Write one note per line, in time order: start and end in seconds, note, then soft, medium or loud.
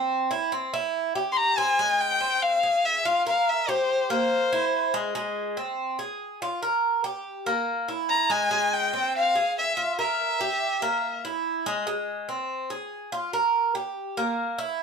0.00 0.30 C4 medium
0.31 0.51 E4 medium
0.52 0.72 C4 medium
0.74 1.14 E4 medium
1.15 1.56 G4 medium
1.32 1.38 C6 medium
1.37 1.59 A#5 loud
1.58 1.78 C4 medium
1.58 2.02 G#5 loud
1.79 2.20 G#3 medium
2.00 2.44 G5 loud
2.21 2.61 C4 medium
2.42 2.87 F5 loud
2.63 3.04 G#4 medium
2.85 3.08 E5 loud
3.05 3.25 F4 medium
3.05 3.26 F5 loud
3.27 3.67 A#4 medium
3.27 3.51 F5 medium
3.49 3.72 E5 medium
3.69 4.09 G4 medium
3.69 4.11 C5 medium
4.10 4.51 A#3 medium
4.10 4.91 C5 loud
4.53 4.93 E4 medium
4.94 5.14 G#3 medium
5.15 5.56 G#3 medium
5.57 5.98 C4 medium
5.99 6.40 G#4 medium
6.42 6.62 F4 medium
6.62 7.03 A#4 medium
7.04 7.45 G4 medium
7.46 7.87 A#3 medium
7.88 8.29 E4 medium
8.10 8.33 A#5 loud
8.30 8.50 G#3 loud
8.30 8.75 G#5 loud
8.51 8.92 G#3 medium
8.74 9.15 G5 medium
8.93 9.34 C4 medium
9.16 9.54 F5 loud
9.35 9.76 G#4 medium
9.59 9.96 E5 loud
9.77 9.97 F4 medium
9.99 10.39 A#4 medium
9.99 11.21 E5 medium
10.41 10.81 G4 medium
10.82 11.23 A#3 medium
11.25 11.65 E4 medium
11.66 11.86 G#3 loud
11.87 12.27 G#3 medium
12.29 12.69 C4 medium
12.70 13.11 G#4 medium
13.12 13.33 F4 medium
13.33 13.74 A#4 medium
13.75 14.16 G4 medium
14.17 14.58 A#3 medium
14.58 14.83 E4 medium